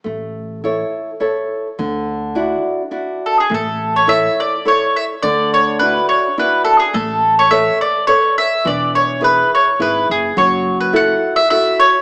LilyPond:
<<
  \new Staff \with { instrumentName = "Mandolin" } { \time 3/4 \key a \major \tempo 4 = 105 r2. | r2 r8 a'16 gis'16 | a'8. cis''16 e''8 d''8 cis''8 e''8 | d''8 cis''8 b'8 cis''8 b'8 a'16 gis'16 |
a'8. cis''16 e''8 d''8 cis''8 e''8 | d''8 cis''8 b'8 cis''8 b'8 gis'8 | cis''8. b'16 fis''8. e''16 e''8 cis''8 | }
  \new Staff \with { instrumentName = "Nylon-string guitar" } { \time 3/4 \key a \major a4 <e' a' cis''>4 <e' a' cis''>4 | d4 <d' e' fis'>4 <d' e' fis'>4 | a4 <e' a' cis''>4 <e' a' cis''>4 | d4 <d' e' fis'>4 <d' e' fis'>4 |
a4 <a' b' cis''>4 <a' b' cis''>4 | e4 <e' gis' b'>4 <e' gis' b'>4 | fis4 <e' fis' a'>4 <e' fis' a'>4 | }
  \new Staff \with { instrumentName = "Upright bass" } { \clef bass \time 3/4 \key a \major a,,2 r4 | d,2 r4 | a,,2 r4 | d,2 r4 |
a,,2 r4 | e,,2 gis,,8 fis,,8 | fis,,2 r4 | }
>>